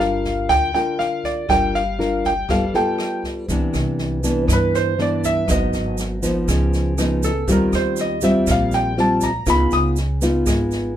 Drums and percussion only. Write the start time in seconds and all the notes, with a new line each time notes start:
0.24 kick, snare
0.49 kick, cross-stick, snare
0.74 snare
0.99 snare
1.24 kick, snare
1.49 kick, cross-stick, snare
1.74 snare
2.00 snare
2.24 kick, snare
2.49 kick, cross-stick, snare
2.74 snare
2.98 cross-stick, snare
3.23 kick, snare
3.48 kick, snare, shaker
3.74 cross-stick, snare, shaker
3.98 snare
4.23 kick, snare, shaker
4.48 kick, cross-stick, snare, shaker
4.74 snare, shaker
4.98 snare
5.23 kick, snare, shaker
5.48 kick, cross-stick, snare, shaker
5.73 snare, shaker
5.98 snare, shaker
6.23 kick, snare, shaker
6.48 kick, cross-stick, snare, shaker
6.73 snare, shaker
6.98 cross-stick, snare, shaker
7.23 kick, snare, shaker
7.48 kick, snare, shaker
7.73 cross-stick, snare, shaker
7.96 snare, shaker
8.21 kick, snare, shaker
8.47 kick, cross-stick, snare, shaker
8.72 snare, shaker
8.97 snare
9.21 kick, snare, shaker
9.46 kick, cross-stick, snare, shaker
9.71 snare, shaker
9.96 snare, shaker
10.22 kick, snare, shaker
10.46 kick, cross-stick, snare, shaker
10.71 snare, shaker